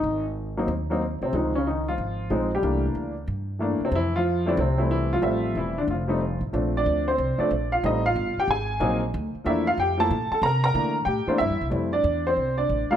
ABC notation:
X:1
M:4/4
L:1/16
Q:"Swing" 1/4=185
K:F
V:1 name="Upright piano"
[_E,_E]2 z12 [C,C]2 | _E,2 [_D,_D]2 [E,_E]2 [F,F]6 z2 [G,G]2- | [G,G]2 z12 [C,C]2 | [E,E]2 [F,F]4 [D,D]2 [C,C]2 [E,E]2 [E,E]2 [F,F]2- |
[F,F]4 [E,E]2 [D,D]2 [F,F]6 z2 | z2 [Dd]4 [Cc]4 d4 [Ff]2 | [_E_e]2 [Ff]4 [Gg]2 [_A_a]6 z2 | z4 [Ee]2 [Ff]2 [Gg]2 [Aa]4 [Aa]2 |
[Bb]2 [Bb]4 z2 [Gg]2 [Cc]2 [Ee]3 z | z2 [Dd]4 [Cc]4 [Dd]4 [Ff]2 |]
V:2 name="Upright piano"
z6 [_G,B,C_E]2 z2 [G,B,CE]2 z4 | [F,_A,C_E]2 z8 z2 [F,A,CE]2 z2 | [E,A,B,D]6 z6 [E,A,B,D]2 z2 | z6 [G,A,CE]2 z2 [G,A,C]6 |
[G,A,Ce]6 z4 [G,A,C_E]2 z4 | [F,A,CD]6 z4 [F,A,CD]2 z4 | [G,A,C_E]2 z8 z2 [_G,B,CE]2 z2 | z4 [F,A,B,D]2 z4 [F,A,B,E]2 z4 |
z4 [E,A,B,D]2 z4 [E,A,B,D]2 z4 | [G,A,CE]2 z12 [G,B,DE]2 |]
V:3 name="Upright bass" clef=bass
_A,,,8 _E,,6 C,,2 | _D,,8 _A,,,4 B,,,4 | C,,4 _D,,4 G,,6 z2 | F,,8 C,,8 |
A,,,4 E,,,4 F,,,6 A,,,2 | B,,,4 D,,4 C,,2 z2 B,,,4 | A,,,4 G,,,2 z2 _A,,,4 B,,,4 | D,,2 z2 E,,4 F,,4 B,,2 z2 |
C,4 D,4 A,,2 z2 (3G,,2 E,,2 C,,2 | F,,4 E,,4 C,,4 A,,,2 z2 |]